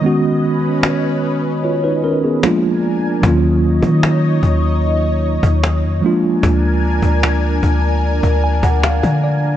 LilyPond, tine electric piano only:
<<
  \new Staff \with { instrumentName = "Tine electric piano" } { \time 4/4 \key ees \minor \tempo 4 = 75 r2 <f' des''>16 <ees' ces''>16 <des' bes'>16 <ces' aes'>8 r8. | r1 | r2 r8 aes''16 ges''16 f''8 d''8 | }
  \new Staff \with { instrumentName = "Tine electric piano" } { \time 4/4 \key ees \minor <ees aes ces' des' ges'>2. <f aes bes d' f'>4 | <ees ges bes des' f'>2.~ <ees ges bes des' f'>8 <f aes bes d' f'>8~ | <f aes bes d' f'>2.~ <f aes bes d' f'>8 r8 | }
>>